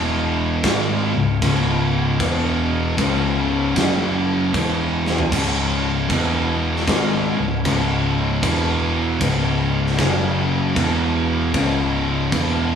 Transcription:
Already playing: picked electric bass E1, distorted electric guitar E2 B2 E3
0.63 picked electric bass G#1, distorted electric guitar G#2 D#3 G#3, kick, snare, crash
1.14 picked electric bass C#1, distorted electric guitar C#2 G#2
1.42 picked electric bass C#1, distorted electric guitar C#2 G#2 C#3, kick, crash
2.20 picked electric bass E1, distorted electric guitar E2 B2 E3, kick, crash
2.97 picked electric bass C#1, distorted electric guitar C#2 G#2 C#3, kick, crash
3.75 picked electric bass F#1, distorted electric guitar F#2 C#3 F#3, kick, snare, crash
4.53 picked electric bass E1, distorted electric guitar E2 B2 E3, kick, crash
5.06 snare
5.18 floor tom
5.31 picked electric bass C#1, distorted electric guitar C#2 G#2 C#3, kick, crash
6.08 picked electric bass E1, distorted electric guitar E2 B2 E3, kick, crash
6.76 snare
6.87 picked electric bass G#1, distorted electric guitar G#2 D#3 G#3, kick, snare, crash
7.37 picked electric bass C#1, distorted electric guitar C#2 G#2
7.64 picked electric bass C#1, distorted electric guitar C#2 G#2 C#3, kick, crash
8.42 picked electric bass E1, distorted electric guitar E2 B2 E3, kick, crash
9.20 picked electric bass C#1, distorted electric guitar C#2 G#2 C#3, kick, crash
9.86 snare
9.98 picked electric bass F#1, distorted electric guitar F#2 C#3 F#3, kick, snare, crash
10.75 picked electric bass E1, distorted electric guitar E2 B2 E3, kick, crash
11.53 picked electric bass C#1, distorted electric guitar C#2 G#2 C#3, kick, crash
12.31 picked electric bass E1, distorted electric guitar E2 B2 E3, kick, crash

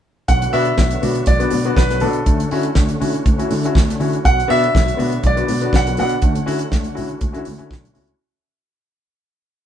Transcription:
0.28 fingered electric bass B1, grand piano B2 F#3 F#5, tonewheel organ D3 F#3 B3 F#4, kick, closed hi-hat, muted conga
0.42 closed hi-hat, muted conga
0.53 fingered electric bass B2, grand piano B3 D4 F#4 E5, open hi-hat
0.65 grand piano D4 F#4, closed hi-hat
0.78 fingered electric bass B1, grand piano B2 F#3, kick, snare, muted conga, high conga
0.91 closed hi-hat
1.02 fingered electric bass B2, grand piano B3 D4 F#4, open hi-hat, high conga, low conga
1.15 grand piano D4 F#4, closed hi-hat
1.26 fingered electric bass B1, grand piano D5, kick, closed hi-hat, muted conga, high conga
1.39 grand piano B3 D4 F#4, closed hi-hat, muted conga
1.50 grand piano B2 F#3, fingered electric bass B2, open hi-hat, high conga
1.64 grand piano B3 D4 F#4, closed hi-hat
1.77 fingered electric bass B1, grand piano D4 F#4 B4, kick, snare, muted conga
1.90 grand piano B2 F#3, snare, closed hi-hat, muted conga
2.00 fingered electric bass B2, grand piano B3 D4 F#4 A4, open hi-hat, low conga
2.13 closed hi-hat
2.25 fingered electric bass D2, tonewheel organ D3 A3 C#4, grand piano D3 A3, kick, closed hi-hat, muted conga
2.40 closed hi-hat, muted conga
2.51 fingered electric bass D3, grand piano C#4 E4 F#4, open hi-hat
2.63 grand piano E4 F#4, closed hi-hat
2.75 fingered electric bass D2, grand piano D3 A3, kick, snare, muted conga, high conga
2.89 closed hi-hat
3.00 fingered electric bass D3, grand piano C#4 E4 F#4, open hi-hat, high conga, low conga
3.13 grand piano E4 F#4, closed hi-hat
3.26 fingered electric bass D2, kick, closed hi-hat, high conga
3.38 grand piano C#4 E4 F#4, closed hi-hat, muted conga
3.51 grand piano D3 A3, fingered electric bass D3, open hi-hat, high conga
3.64 grand piano C#4 E4 F#4, closed hi-hat
3.74 fingered electric bass D2, grand piano E4 F#4, kick, snare
3.88 grand piano D3 A3, snare, closed hi-hat
4.00 fingered electric bass D3, grand piano C#4 E4 F#4, open hi-hat, low conga
4.13 closed hi-hat
4.23 fingered electric bass B1, grand piano B2 F#3 F#5, tonewheel organ F#3 B3, kick, closed hi-hat, muted conga
4.40 closed hi-hat
4.48 fingered electric bass B2, grand piano B3 D4 F#4 E5, open hi-hat
4.63 grand piano D4 F#4, closed hi-hat
4.75 fingered electric bass B1, grand piano B2 F#3, kick, snare, muted conga, high conga
4.88 closed hi-hat
4.97 fingered electric bass B2, grand piano B3 D4 F#4, open hi-hat, high conga, low conga
5.12 grand piano D4 F#4, closed hi-hat
5.23 fingered electric bass B1, grand piano D5, kick, closed hi-hat, high conga
5.37 grand piano B3 D4 F#4, closed hi-hat, muted conga
5.48 grand piano B2 F#3, fingered electric bass B2, open hi-hat, high conga
5.61 grand piano B3 D4 F#4, closed hi-hat
5.73 fingered electric bass B1, grand piano D4 F#4 F#5, kick, snare
5.87 grand piano B2 F#3, closed hi-hat
5.97 fingered electric bass B2, grand piano B3 D4 F#4 F#5, open hi-hat, low conga
6.09 closed hi-hat
6.22 fingered electric bass D2, grand piano D3 A3, tonewheel organ A3 C#4, kick, closed hi-hat, muted conga
6.35 closed hi-hat, muted conga
6.46 fingered electric bass D3, grand piano C#4 E4 F#4, open hi-hat
6.59 grand piano E4 F#4, closed hi-hat
6.70 fingered electric bass D2, grand piano D3 A3, kick, snare, high conga
6.84 closed hi-hat, muted conga
6.95 fingered electric bass D3, grand piano C#4 E4 F#4, open hi-hat, high conga, low conga
7.09 grand piano E4 F#4, closed hi-hat
7.21 fingered electric bass D2, kick, closed hi-hat, high conga
7.33 fingered electric bass D3, grand piano C#4 E4 F#4, closed hi-hat
7.45 fingered electric bass D2, grand piano D3 A3, open hi-hat, high conga
7.58 fingered electric bass D3, grand piano C#4 E4 F#4, closed hi-hat
7.69 fingered electric bass B1, grand piano D3 A3, kick, snare
7.85 closed hi-hat, muted conga
7.94 fingered electric bass C#2, grand piano C#4 E4 F#4, open hi-hat, low conga
8.07 closed hi-hat

